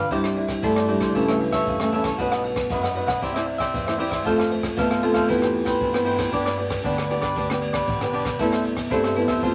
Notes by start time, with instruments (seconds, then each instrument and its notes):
Already playing: cavaquinho G4
0.11 fingered electric bass C2, nylon-string guitar C3 G3 D4 E4, marimba G3 D4 E4 G4, cavaquinho E4 G4 C5 D5, kick, ride
0.24 cavaquinho G4 C5 D5, cross-stick
0.36 nylon-string guitar G3 D4 E4, muted cavaquinho stroke, ride
0.48 kick, cross-stick, ride
0.62 fingered electric bass G2, nylon-string guitar G3 D4 E4, marimba A3 A4, cavaquinho E4 G4 C5 D5, kick, ride
0.76 cavaquinho G4 C5 D5, cross-stick
0.88 marimba G3 D4 E4 G4, nylon-string guitar G3 D4 E4, cavaquinho E4 G4 C5 D5, ride
0.99 fingered electric bass C2, cavaquinho G4 C5 D5, kick, cross-stick, ride
1.14 fingered electric bass C#2, nylon-string guitar C#3 E3 A3 C#4, marimba A3 C#4 E4 A4, cavaquinho E4 A4 C#5 E5, kick, ride
1.28 nylon-string guitar E3 A3 C#4, cavaquinho A4 C#5 E5, cross-stick
1.40 muted cavaquinho stroke, ride
1.52 cavaquinho A4 C#5 E5, kick, cross-stick, ride
1.66 fingered electric bass E2, nylon-string guitar C#3, kick, ride
1.80 nylon-string guitar E3 A3 C#4, cavaquinho A4 C#5 E5, cross-stick
1.92 nylon-string guitar E3 A3 C#4, cavaquinho E4 A4 C#5 E5, ride
2.04 cavaquinho A4 C#5 E5, kick, cross-stick, ride
2.18 fingered electric bass B1, nylon-string guitar B2 F#3 B3 D#4, cavaquinho F#4 B4 D#5 F#5, kick, ride
2.31 cavaquinho B4 D#5 F#5, cross-stick
2.44 muted cavaquinho stroke, ride
2.56 kick, cross-stick, ride
2.70 fingered electric bass F#2, nylon-string guitar F#2 F#3 B3 D#4, cavaquinho F#4 B4 D#5 F#5, kick, ride
2.83 cavaquinho B4 D#5 F#5, cross-stick
2.95 nylon-string guitar F#3 B3 D#4, cavaquinho F#4 B4 D#5 F#5, ride
3.07 fingered electric bass B1, cavaquinho B4 D#5 F#5, kick, cross-stick, ride
3.21 fingered electric bass C2, nylon-string guitar C3 G3 C4 E4, cavaquinho E4 G4 C5 E5, kick, ride
3.34 nylon-string guitar G3 C4 E4, cavaquinho G4 C5 E5, cross-stick
3.47 muted cavaquinho stroke, ride
3.58 cavaquinho G4 C5 E5, kick, cross-stick, ride
3.74 fingered electric bass E2, nylon-string guitar G2, kick, ride
3.86 nylon-string guitar G3 C4 E4, cavaquinho G4 C5 E5, cross-stick
3.98 nylon-string guitar G3 C4 E4, cavaquinho E4 G4 C5 E5, ride
4.11 cavaquinho G4 C5 E5, kick, cross-stick, ride
4.24 fingered electric bass F2, nylon-string guitar F2 F3 A3 C4, marimba A3 C4 F4 A4, cavaquinho F4 A4 C5 F5, kick, ride
4.38 cavaquinho A4 C5 F5, cross-stick
4.50 nylon-string guitar F3 A3 C4, muted cavaquinho stroke, ride
4.63 kick, cross-stick, ride
4.76 fingered electric bass C2, nylon-string guitar C3 F3 A3 C4, marimba B3 B4, cavaquinho F4 A4 C5 F5, kick, ride
4.90 cavaquinho A4 C5 F5, cross-stick
5.02 nylon-string guitar F3 A3 C4, marimba A3 C4 F4 A4, cavaquinho F4 A4 C5 F5, ride
5.13 fingered electric bass F2, cavaquinho A4 C5 F5, kick, cross-stick, ride
5.28 fingered electric bass E2, nylon-string guitar E3 B3 C4 G4, marimba B3 E4 G4 B4, cavaquinho E4 B4 C5 G5, kick, ride
5.41 nylon-string guitar B3 G4, cavaquinho B4 C5 G5, cross-stick
5.54 muted cavaquinho stroke, ride
5.65 cavaquinho B4 C5 G5, kick, cross-stick, ride
5.80 fingered electric bass G2, nylon-string guitar E3, kick, ride
5.93 nylon-string guitar B3 C4 G4, cavaquinho B4 C5 G5, cross-stick
6.05 cavaquinho E4 B4 C5 G5, ride
6.17 cavaquinho B4 C5 G5, kick, cross-stick, ride
6.31 fingered electric bass G2, nylon-string guitar G3 B3 D4 G4, cavaquinho D4 G4 B4 D5, kick, ride
6.45 cavaquinho G4 B4 D5, cross-stick
6.58 nylon-string guitar B3 D4 G4, muted cavaquinho stroke, ride
6.70 kick, cross-stick, ride
6.84 fingered electric bass D2, nylon-string guitar D3 B3 D4 G4, cavaquinho D4 G4 B4 D5, kick, ride
6.97 cavaquinho G4 B4 D5, cross-stick
7.09 nylon-string guitar B3 D4 G4, cavaquinho D4 G4 B4 D5, ride
7.21 fingered electric bass G2, cavaquinho G4 B4 D5, kick, cross-stick, ride
7.36 fingered electric bass D2, nylon-string guitar G3, cavaquinho D4 G4 B4 D5, kick, ride
7.49 nylon-string guitar B3 D4 G4, cavaquinho G4 B4 D5, cross-stick
7.61 muted cavaquinho stroke, ride
7.73 cavaquinho G4 B4 D5, kick, cross-stick, ride
7.88 fingered electric bass A1, nylon-string guitar D3, kick, ride
8.01 nylon-string guitar B3 D4 G4, cavaquinho G4 B4 D5, cross-stick
8.13 fingered electric bass B1, cavaquinho D4 G4 B4 D5, ride
8.24 cavaquinho G4 B4 D5, kick, cross-stick, ride
8.39 fingered electric bass C2, nylon-string guitar C3 G3 A3 E4, marimba B3 B4, cavaquinho E4 A4 C5 E5, kick, ride
8.53 cavaquinho A4 C5 E5, cross-stick
8.65 muted cavaquinho stroke, ride
8.77 kick, cross-stick, ride
8.90 fingered electric bass G2, nylon-string guitar G2 G3 A3 E4, marimba C4 G4 A4 C5, cavaquinho E4 A4 C5 E5, kick, ride
9.04 cavaquinho A4 C5 E5, cross-stick
9.15 nylon-string guitar G3 A3 E4, marimba B3 B4, cavaquinho E4 A4 C5 E5, ride
9.28 cavaquinho A4 C5 E5, kick, cross-stick, ride
9.42 fingered electric bass F2, nylon-string guitar F2 F3 A3 C4, marimba C4 F4 A4 C5, cavaquinho F4 A4 C5 F5, kick, ride